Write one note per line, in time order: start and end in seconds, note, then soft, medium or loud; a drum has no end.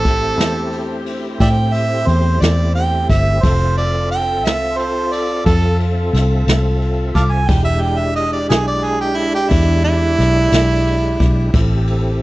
0.00 0.37 A1 loud
0.00 3.39 A3 medium
0.00 3.26 C4 medium
0.00 3.39 C4 medium
0.00 3.39 E4 medium
0.00 3.26 G4 medium
0.00 3.40 G4 medium
0.00 1.02 A4 loud
0.00 3.26 C5 loud
0.05 kick medium
0.05 ride medium
0.37 1.36 E2 loud
0.37 snare loud
0.37 ride medium
0.72 ride medium
1.06 ride medium
1.40 2.04 A2 loud
1.40 1.48 D5 medium
1.40 1.49 E5 medium
1.40 1.74 G5 loud
1.40 kick medium
1.40 ride medium
1.73 2.09 E5 loud
1.73 ride medium
2.07 2.39 E2 loud
2.07 2.43 C5 medium
2.07 ride medium
2.41 3.05 E2 loud
2.41 2.74 D5 medium
2.41 snare loud
2.41 ride medium
2.75 3.08 G5 loud
2.75 ride medium
3.09 3.40 G1 medium
3.09 3.44 E5 loud
3.09 kick medium
3.09 snare soft
3.09 ride medium
3.42 4.44 F1 loud
3.42 7.44 C4 medium
3.42 7.44 F4 medium
3.42 7.45 F4 medium
3.42 7.44 A4 medium
3.42 7.45 A4 medium
3.42 3.75 C5 loud
3.42 7.44 E5 medium
3.42 kick loud
3.42 ride medium
3.78 4.10 D5 medium
3.78 ride medium
4.11 4.46 G5 loud
4.11 ride medium
4.44 5.41 C2 loud
4.44 4.79 E5 medium
4.44 snare loud
4.44 ride medium
4.77 5.14 C5 medium
4.77 ride medium
5.12 5.45 D5 medium
5.12 ride medium
5.46 6.10 F2 loud
5.46 5.79 A4 loud
5.46 kick medium
5.46 ride medium
5.80 ride medium
6.13 6.44 C2 loud
6.13 snare soft
6.13 ride medium
6.47 7.11 C2 medium
6.47 snare loud
6.47 ride medium
6.82 ride medium
7.15 7.46 C2 medium
7.15 7.24 F5 medium
7.15 7.21 A5 medium
7.15 7.34 D6 loud
7.15 kick medium
7.15 snare soft
7.15 ride medium
7.32 7.49 G#5 medium
7.47 8.50 E1 loud
7.47 11.51 G#3 medium
7.47 11.36 D4 medium
7.47 11.51 D4 medium
7.47 11.51 E4 medium
7.47 12.22 G4 medium
7.47 11.50 G4 medium
7.47 7.64 G5 loud
7.47 kick loud
7.47 ride medium
7.65 7.83 E5 medium
7.81 8.00 G5 loud
7.81 ride medium
7.98 8.14 E5 loud
8.15 8.31 D#5 loud
8.15 ride medium
8.33 8.49 D5 medium
8.49 9.47 B1 loud
8.49 8.65 G#4 medium
8.49 snare loud
8.49 ride medium
8.67 8.85 D5 loud
8.84 9.00 G#4 loud
8.84 ride medium
9.01 9.18 G4 medium
9.17 9.33 E4 medium
9.17 ride medium
9.35 9.51 G4 loud
9.49 10.15 E2 loud
9.49 9.83 E4 loud
9.49 kick medium
9.49 ride medium
9.84 11.84 E4 loud
9.84 ride medium
10.19 10.50 B1 medium
10.19 snare soft
10.19 ride medium
10.52 11.16 B1 medium
10.52 snare loud
10.52 ride medium
10.87 ride medium
11.20 11.51 B1 loud
11.20 kick medium
11.20 snare soft
11.20 ride medium
11.52 12.22 A1 loud
11.52 12.22 C4 medium
11.52 12.22 E4 medium
11.52 12.22 G4 medium
11.52 12.22 A4 medium
11.52 kick loud
11.52 ride loud
11.87 ride medium